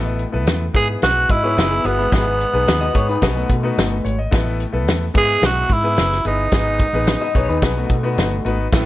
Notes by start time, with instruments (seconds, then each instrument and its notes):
Already playing: fingered electric bass A1, grand piano A2 B3 E4 A4 B4
0.19 closed hi-hat
0.32 fingered electric bass B1, grand piano B3 E4 A4 B4
0.47 fingered electric bass E2, snare, closed hi-hat
0.74 fingered electric bass G#2, grand piano G#2 B3 E4 G#4 B4, tenor saxophone G#4, kick, closed hi-hat
1.02 fingered electric bass B1, tenor saxophone F#4, snare, closed hi-hat
1.30 fingered electric bass G#2, tenor saxophone E4, clean electric guitar F#4 D#5, kick, closed hi-hat
1.43 grand piano B3 E4 G#4 B4, clean electric guitar E4 C#5
1.57 fingered electric bass F#1, clean electric guitar D#4 B4, snare, closed hi-hat
1.71 clean electric guitar B3 G#4
1.84 fingered electric bass G1, grand piano B3 E4 G#4 B4, tenor saxophone B3, clean electric guitar F#4, closed hi-hat
1.99 clean electric guitar G#3 E4
2.12 fingered electric bass G#1, grand piano G#2 B3 D#4 G#4 B4, kick, snare, closed hi-hat
2.40 closed hi-hat
2.53 fingered electric bass B1, grand piano B3 D#4 G#4 B4
2.68 fingered electric bass D#2, snare, closed hi-hat
2.81 clean electric guitar F#4 D#5
2.94 fingered electric bass G#2, grand piano B3 D#4 G#4 B4, clean electric guitar C#5, kick, closed hi-hat
3.09 clean electric guitar D#4 B4
3.22 fingered electric bass B1, grand piano B2 B3 D#4 F#4 B4, clean electric guitar G#4, kick, snare, closed hi-hat
3.36 clean electric guitar A3 F#4
3.50 fingered electric bass B2, kick, closed hi-hat
3.63 grand piano B3 D#4 F#4 B4
3.77 fingered electric bass G1, grand piano A4, snare, closed hi-hat
3.91 grand piano B4
4.05 fingered electric bass G#1, grand piano C#5, closed hi-hat
4.19 grand piano D#5
4.31 fingered electric bass A1, grand piano A2 B3 E4 A4 B4, kick, snare, closed hi-hat
4.60 closed hi-hat
4.72 fingered electric bass B1, grand piano B3 E4 A4 B4
4.87 fingered electric bass E2, snare, closed hi-hat
5.14 grand piano G#2 B3 E4 G#4 B4, fingered electric bass G#2, tenor saxophone G#4, kick, closed hi-hat
5.29 closed hi-hat
5.42 fingered electric bass B1, tenor saxophone F#4, snare, closed hi-hat
5.70 fingered electric bass G#2, tenor saxophone E4, kick, closed hi-hat
5.83 grand piano B3 E4 G#4 B4
5.97 fingered electric bass F#1, snare, closed hi-hat
6.12 snare
6.25 fingered electric bass G1, grand piano B3 E4 G#4 B4, tenor saxophone D#4, closed hi-hat
6.52 fingered electric bass G#1, grand piano G#2 B3 D#4 G#4 B4, kick, snare, closed hi-hat
6.79 kick, closed hi-hat
6.93 fingered electric bass A1, grand piano B3 D#4 G#4 B4
7.07 snare, closed hi-hat
7.21 clean electric guitar F#4 D#5
7.35 fingered electric bass B1, grand piano B3 D#4 G#4 B4, clean electric guitar C#5, kick, closed hi-hat
7.49 fingered electric bass D#2, clean electric guitar D#4 B4
7.62 fingered electric bass B1, grand piano B2 B3 D#4 F#4 B4, clean electric guitar B3 G#4, kick, snare, closed hi-hat
7.77 clean electric guitar A3 F#4
7.90 fingered electric bass B2, kick, closed hi-hat
8.03 grand piano B3 D#4 F#4 B4
8.18 fingered electric bass G1, snare, closed hi-hat
8.45 fingered electric bass G#1, grand piano B3 D#4 F#4 B4, closed hi-hat
8.72 fingered electric bass A1, baritone saxophone A2, grand piano A2 B3 E4 A4 B4, kick, snare, closed hi-hat